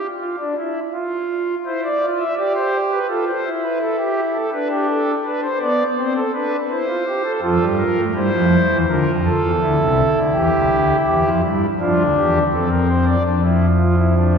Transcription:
0.21 0.36 F4 medium
0.39 0.55 D4 medium
0.57 0.79 E4 medium
0.94 1.55 F4 medium
1.66 1.88 E4 medium
1.66 1.81 C5 medium
1.84 2.06 D5 medium
2.02 2.24 F4 medium
2.19 2.34 E5 medium
2.37 2.99 G4 medium
2.37 2.52 D5 medium
2.55 2.77 C5 medium
2.91 3.06 B4 medium
3.09 3.31 F4 medium
3.09 3.24 A4 medium
3.27 3.49 C5 medium
3.45 4.37 E4 medium
3.63 3.78 B4 medium
3.81 3.96 A4 medium
3.99 4.21 G4 medium
4.34 4.50 A4 medium
4.52 5.14 D4 medium
4.52 4.68 B4 medium
4.71 4.86 G4 medium
4.89 5.11 A4 medium
5.25 5.47 D4 medium
5.25 5.40 B4 medium
5.42 5.58 C5 medium
5.61 5.83 B3 medium
5.61 5.83 D5 medium
5.97 6.20 C4 medium
5.97 6.13 C5 medium
6.16 6.31 A4 medium
6.34 6.56 D4 medium
6.34 6.56 B4 medium
6.70 6.86 E4 medium
6.70 7.32 C5 medium
6.88 7.04 F4 medium
7.06 7.22 G4 medium
7.24 7.40 A4 medium
7.42 7.58 F2 medium
7.42 7.58 F3 medium
7.42 8.04 F4 medium
7.42 7.65 A4 medium
7.60 7.82 G2 medium
7.60 7.82 G3 medium
7.78 8.01 A#4 medium
7.96 8.12 A3 medium
8.14 8.30 G2 medium
8.14 8.30 G3 medium
8.14 8.77 E4 medium
8.14 8.77 C5 medium
8.33 8.56 F2 medium
8.33 8.55 F3 medium
8.70 8.86 E2 medium
8.70 8.86 E3 medium
8.88 9.04 D2 medium
8.88 9.04 D3 medium
8.88 9.51 F4 medium
8.88 9.11 A#4 medium
9.07 9.29 F2 medium
9.07 9.29 F3 medium
9.25 10.19 A4 medium
9.43 9.59 E2 medium
9.43 9.59 E3 medium
9.61 9.77 D2 medium
9.61 9.77 D3 medium
9.61 11.41 E4 medium
9.79 10.02 C2 medium
9.79 10.02 C3 medium
10.16 10.31 D2 medium
10.16 10.31 D3 medium
10.34 10.50 E2 medium
10.34 10.50 E3 medium
10.34 10.96 G4 medium
10.53 10.68 C2 medium
10.53 10.68 C3 medium
10.70 10.93 D2 medium
10.70 10.93 D3 medium
11.07 11.22 E2 medium
11.07 11.22 E3 medium
11.07 11.29 G4 medium
11.24 11.40 F2 medium
11.24 11.41 F3 medium
11.43 11.66 G2 medium
11.43 11.66 G3 medium
11.43 11.66 E4 medium
11.80 11.96 F2 medium
11.80 11.96 F3 medium
11.80 12.43 D4 medium
11.80 12.03 F4 medium
11.99 12.14 D2 medium
11.99 12.14 D3 medium
12.16 12.39 E2 medium
12.16 12.39 E3 medium
12.16 12.39 G4 medium
12.53 13.15 F2 medium
12.53 13.15 F3 medium
12.53 13.15 C4 medium
12.53 12.69 A4 medium
12.71 12.87 A#4 medium
12.89 13.05 C5 medium
13.06 13.22 D5 medium
13.24 14.38 F2 medium
13.24 14.38 F3 medium
13.24 13.41 D4 medium
13.43 13.66 E4 medium
13.80 13.96 F4 medium
13.99 14.14 E4 medium
14.17 14.38 D4 medium

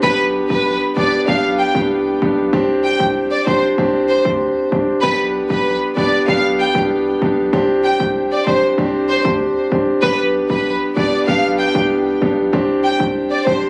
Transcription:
0.03 0.41 B1 loud
0.03 0.89 B3 loud
0.03 0.89 D4 medium
0.03 0.90 G4 loud
0.03 0.15 B4 loud
0.50 0.75 B1 loud
0.50 0.74 B4 medium
0.97 1.09 C2 medium
0.97 1.26 B3 medium
0.97 1.26 D4 medium
0.97 1.26 G4 medium
0.97 1.21 D5 medium
1.28 1.66 B1 loud
1.28 1.71 B3 medium
1.28 1.71 D4 medium
1.28 1.71 G4 loud
1.28 1.40 F5 medium
1.59 1.71 G5 medium
1.75 2.13 C2 loud
1.75 2.18 B3 medium
1.75 2.18 D4 medium
1.75 2.18 G4 medium
2.22 2.47 B1 medium
2.22 2.50 B3 medium
2.22 2.51 D4 medium
2.22 2.51 G4 medium
2.53 2.91 C2 loud
2.53 3.39 C4 loud
2.53 3.39 D4 medium
2.53 3.40 G4 loud
2.85 2.96 G5 medium
3.00 3.25 C2 loud
3.31 3.43 D5 medium
3.47 3.59 B1 medium
3.47 3.76 C4 medium
3.47 3.76 D4 medium
3.47 3.76 G4 medium
3.47 3.59 C5 medium
3.78 4.16 C2 loud
3.78 4.21 C4 medium
3.78 4.21 D4 medium
3.78 4.22 G4 loud
4.09 4.21 C5 medium
4.25 4.50 D2 loud
4.25 4.68 C4 medium
4.25 4.68 D4 medium
4.25 4.68 G4 medium
4.72 4.85 C2 medium
4.72 5.00 C4 medium
4.72 5.01 D4 medium
4.72 5.01 G4 medium
5.03 5.41 B1 loud
5.03 5.89 B3 medium
5.03 5.89 D4 medium
5.03 5.89 G4 loud
5.03 5.15 B4 loud
5.50 5.75 B1 loud
5.50 5.74 B4 medium
5.96 6.09 C2 medium
5.96 6.25 B3 medium
5.96 6.26 D4 medium
5.96 6.26 G4 medium
5.96 6.21 D5 medium
6.28 6.66 B1 loud
6.28 6.71 B3 loud
6.28 6.71 D4 medium
6.28 6.71 G4 loud
6.28 6.40 F5 medium
6.60 6.71 G5 medium
6.75 7.12 C2 loud
6.75 7.18 B3 medium
6.75 7.18 D4 medium
6.75 7.18 G4 medium
7.22 7.47 B1 medium
7.22 7.50 B3 medium
7.22 7.51 D4 medium
7.22 7.51 G4 medium
7.53 7.91 C2 loud
7.53 8.39 C4 loud
7.53 8.39 D4 medium
7.53 8.39 G4 loud
7.84 7.96 G5 medium
8.00 8.25 C2 loud
8.32 8.43 D5 medium
8.46 8.59 B1 loud
8.46 8.75 C4 medium
8.46 8.76 D4 medium
8.46 8.76 G4 medium
8.46 8.59 C5 medium
8.78 9.16 C2 loud
8.78 9.21 C4 medium
8.78 9.21 D4 medium
8.78 9.21 G4 loud
9.09 9.21 C5 medium
9.25 9.50 D2 loud
9.25 9.68 C4 medium
9.25 9.68 D4 medium
9.25 9.68 G4 medium
9.71 9.84 C2 medium
9.71 10.00 C4 medium
9.71 10.01 D4 medium
9.71 10.01 G4 medium
10.03 10.40 B1 loud
10.03 10.89 B3 medium
10.03 10.89 D4 medium
10.03 10.89 G4 loud
10.03 10.15 B4 loud
10.50 10.75 B1 loud
10.50 10.74 B4 medium
10.96 11.09 C2 medium
10.96 11.25 B3 medium
10.96 11.26 D4 medium
10.96 11.26 G4 medium
10.96 11.20 D5 medium
11.28 11.66 B1 loud
11.28 11.71 B3 medium
11.28 11.71 D4 medium
11.28 11.71 G4 loud
11.28 11.40 F5 medium
11.59 11.71 G5 medium
11.75 12.13 C2 loud
11.75 12.18 B3 medium
11.75 12.18 D4 medium
11.75 12.18 G4 medium
12.22 12.47 B1 medium
12.22 12.50 B3 medium
12.22 12.51 D4 medium
12.22 12.51 G4 medium
12.53 12.91 C2 loud
12.53 13.39 C4 medium
12.53 13.39 D4 medium
12.53 13.39 G4 loud
12.84 12.96 G5 medium
13.00 13.25 C2 loud
13.31 13.43 D5 medium
13.46 13.59 B1 medium
13.46 13.70 C4 medium
13.46 13.70 D4 medium
13.46 13.70 G4 medium
13.46 13.58 C5 medium

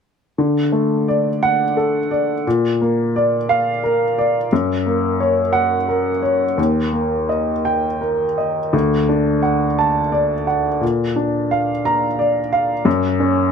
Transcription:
0.38 2.41 D3 soft
0.72 1.28 A3 soft
1.08 1.62 D5 soft
1.43 1.97 F#5 medium
1.77 2.32 A4 soft
2.11 2.45 D5 soft
2.47 4.48 A#2 medium
2.81 3.35 A#3 soft
3.16 3.70 D5 soft
3.49 4.03 F5 medium
3.84 4.38 A#4 soft
4.18 4.52 D5 soft
4.53 6.55 F#2 medium
4.86 5.40 A#3 soft
5.20 5.74 C#5 soft
5.53 6.08 F#5 medium
5.88 6.44 A#4 soft
6.23 6.58 C#5 soft
6.58 8.69 D#2 soft
6.93 7.50 A#3 soft
7.29 7.87 D#5 soft
7.65 8.23 G5 soft
8.01 8.59 A#4 soft
8.38 8.73 D#5 soft
8.73 10.78 D2 soft
9.09 9.64 D4 soft
9.42 9.98 F#5 soft
9.79 10.34 A5 medium
10.12 10.68 D5 soft
10.47 10.82 F#5 soft
10.81 12.81 A#2 soft
11.16 11.70 D4 soft
11.51 12.05 F5 soft
11.85 12.39 A#5 medium
12.19 12.72 D5 soft
12.53 12.86 F5 soft
12.85 13.52 F#2 medium
13.20 13.52 C#4 soft

